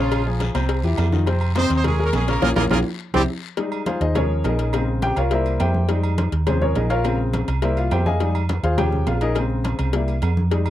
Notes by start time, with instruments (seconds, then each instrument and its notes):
Already playing: fingered electric bass A#1, upright piano C#3 C#4 C#5, horn section F3 F4
0.00 horn section G#3
0.11 cowbell, high conga, low agogo, long guiro
0.26 upright piano F3 F4 G#4, high conga
0.40 cowbell, high conga, low timbale, low agogo, short guiro
0.54 fingered electric bass C2, upright piano C3 C4 C5, cowbell, high conga, low agogo, short guiro
0.69 cowbell, high conga, low agogo, long guiro
0.83 fingered electric bass E2, upright piano E3 E4 G4, high conga, low agogo
0.98 fingered electric bass F2, cowbell, high conga, low timbale, low agogo, short guiro
1.12 upright piano D#3 D#4 F4, high conga, short guiro
1.27 upright piano C3 C4 C5, cowbell, low agogo, long guiro
1.41 high conga, low agogo
1.55 upright piano C3 C4 C5, horn section C4 D#4 C5, cowbell, high conga, low timbale, low agogo, short guiro
1.70 fingered electric bass D#2, cowbell, short guiro
1.76 horn section C4 D#4 C5
1.84 upright piano G#3 G#4 A#4, horn section G#3 C#4 G#4, cowbell, high conga, low conga, low agogo, long guiro
1.99 upright piano G#3 G#4 A#4, high conga
2.05 horn section A#3 C#4 A#4
2.13 fingered electric bass A#1, horn section G#3 C#4 G#4, cowbell, high conga, low timbale, low agogo, short guiro
2.28 upright piano C#3 C#4 C#5, horn section A#3 C#4 A#4, cowbell, low agogo, short guiro
2.42 fingered electric bass A#1, upright piano A#3 C#4 F4, horn section A#3 F4 G#4 A#4, cowbell, high conga, high timbale, long guiro
2.56 fingered electric bass A#1, upright piano A#3 C#4 F4, horn section A#3 F4 G#4 A#4, cowbell, high conga, high timbale, long guiro
2.70 fingered electric bass A#1, upright piano A#3 C#4 F4, horn section A#3 F4 G#4 A#4, cowbell, high conga, high timbale, long guiro
3.14 fingered electric bass C2, horn section G3 C4 E4 G4, upright piano C4 E4 G4, cowbell, high conga, high timbale, long guiro
3.57 upright piano G3 G#3 D#4, cowbell, high conga, low agogo
3.72 high conga, low agogo
3.86 upright piano F4 G#4 C5 F5, cowbell, high conga, low timbale, low agogo
4.01 fingered electric bass D#2, upright piano D#4 G#4 C5 D#5, cowbell
4.15 upright piano F3 G#3 C#4 G#4 A#4 C#5, cowbell, high conga, low conga, low agogo
4.30 high conga
4.44 fingered electric bass A#1, upright piano D#4 G#4 A#4 D#5, cowbell, high conga, low timbale, low agogo
4.59 cowbell, low agogo
4.73 upright piano C#3 G#3 C4, cowbell, low agogo
4.88 high conga
5.02 upright piano G4 G5, cowbell, high conga, low timbale, low agogo
5.16 fingered electric bass C2, upright piano F4 A#4 C#5 F5, cowbell, high conga, low agogo
5.31 upright piano G3 A#3 E4 A#4 C5 E5, cowbell, high conga, low agogo
5.46 high conga, low agogo
5.60 fingered electric bass F2, upright piano G4 C5 E5 G5, cowbell, low timbale, low agogo
5.74 high conga
5.89 upright piano G3 G#3 D#4, cowbell, low agogo
6.03 high conga, low agogo
6.18 cowbell, high conga, low timbale, low agogo
6.32 fingered electric bass D#2, cowbell, high conga
6.47 upright piano F3 G#3 C4 C#4 C5, cowbell, high conga, low conga, low agogo
6.62 upright piano C#4 G#4 A#4 C#5, high conga, low conga
6.75 fingered electric bass A#1, upright piano D#4 G#4 A#4 D#5, cowbell, high conga, low timbale, low agogo
6.90 upright piano F4 A#4 C#5 F5, cowbell, low agogo
7.04 upright piano C#3 G#3 C4, cowbell, low agogo
7.19 high conga
7.33 cowbell, high conga, low timbale, low agogo
7.48 fingered electric bass C2, cowbell, high conga, low agogo
7.62 upright piano G3 A#3 E4 A#4 C5 E5, cowbell, high conga, low agogo
7.77 upright piano F4 F5, high conga, low agogo
7.91 fingered electric bass F2, upright piano G4 C5 E5 G5, cowbell, low timbale, low agogo
8.06 upright piano G#4 D#5 F5 G#5, high conga
8.20 upright piano G3 G#3 D#4, cowbell, high conga, low agogo
8.35 high conga, low agogo
8.49 cowbell, high conga, low timbale, low agogo
8.63 fingered electric bass D#2, upright piano F4 G#4 C5 F5, cowbell, high conga
8.77 upright piano F3 G#3 C#4 G4 G5, cowbell, high conga, low conga, low agogo
8.92 high conga, low conga
9.07 fingered electric bass A#1, upright piano F4 F5, cowbell, high conga, low timbale, low agogo
9.21 upright piano D#4 G#4 A#4 D#5, cowbell, high conga, low agogo
9.35 upright piano C#3 G#3 C4, cowbell, low agogo
9.50 high conga
9.64 cowbell, high conga, low timbale, low agogo
9.79 fingered electric bass C2, cowbell, high conga, low agogo
9.93 upright piano G3 A#3 E4, cowbell, high conga, low agogo
10.08 high conga, low agogo
10.22 fingered electric bass F2, cowbell, low timbale, low agogo
10.37 high conga
10.51 upright piano G3 G#3 D#4, cowbell, low agogo
10.66 high conga, low agogo